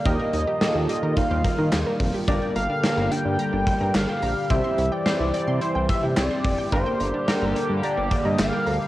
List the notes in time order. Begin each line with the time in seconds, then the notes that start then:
Already playing: A#3
0.06 D#2 D#3 G3 A#3 D#4 F4 G4 A#4 D#5, kick, closed hi-hat
0.20 A#4
0.33 D#2 D#4, closed hi-hat
0.48 G4
0.61 A#3 D#4 G4 A4 A#4 D#5, snare, closed hi-hat
0.75 D#2 D#4
0.89 G4 D#5, closed hi-hat
1.03 D#3 A#4
1.17 D#4 F5, kick, closed hi-hat
1.31 D#2 G4
1.45 A#4, kick, closed hi-hat
1.58 D#3 D#4
1.72 D#2 G4, snare, clap, closed hi-hat
1.86 A#4
2.00 F1, kick, open hi-hat
2.14 G4
2.28 G1 D3 A#3 D4 G4 A#4 D5, kick, closed hi-hat
2.42 G5
2.56 G1 F5 A#5, closed hi-hat
2.70 D4
2.83 A#3 D4 G4 A#4 G5, snare, closed hi-hat
2.97 G1 A#5
3.11 D4 G5, closed hi-hat
3.25 G2
3.39 A#5, closed hi-hat
3.53 G1 D4
3.67 G5, kick, closed hi-hat
3.81 G2 A#5
3.94 G1 F5, snare, clap, closed hi-hat
4.09 G5
4.22 A#1 A#5, open hi-hat
4.50 C2 E3 C4 E4 G4 C5 E5 G5, kick, closed hi-hat
4.64 C6
4.78 C2 E4, closed hi-hat
4.92 D5 G5
5.06 C4 E4 G4 C5 C6, snare, closed hi-hat
5.20 C2 E4
5.34 D5 G5, closed hi-hat
5.47 C3 C6
5.61 E4 C5, closed hi-hat
5.75 C2 G5
5.89 E5 C6, kick, closed hi-hat
6.03 C3 E4
6.17 C2 D5 G5, snare, clap, closed hi-hat
6.31 C6
6.44 F1, kick, open hi-hat
6.58 G5
6.72 G1 D3 G3 A#3 D4 G4 A#4 C5, kick, closed hi-hat
6.86 G5
7.00 G1 A#5, closed hi-hat
7.14 D4
7.28 A#3 D4 G4 A#4 G5, snare, closed hi-hat
7.42 G1 A#5
7.55 D4, closed hi-hat
7.70 G2
7.83 D5 A#5, closed hi-hat
7.97 G1 D4
8.11 G5, kick, closed hi-hat
8.25 G2 D#5 A#5
8.39 G1 F5, snare, clap, closed hi-hat
8.53 G5
8.66 D2 A#5, open hi-hat